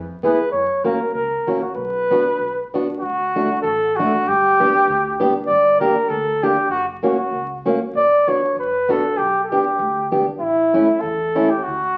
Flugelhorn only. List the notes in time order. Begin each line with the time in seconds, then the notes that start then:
0.24 B4
0.52 C#5
0.84 A#4
1.14 A#4
1.61 F#4
1.75 B4
3.00 F#4
3.62 A4
3.96 F#4
4.28 G4
5.46 D5
5.80 A#4
6.09 A4
6.43 G4
6.71 F#4
7.05 F#4
7.96 D5
8.28 C#5
8.59 B4
8.91 A4
9.17 G4
9.44 A4
9.49 G4
10.40 E4
11.00 A4
11.49 G4
11.63 F#4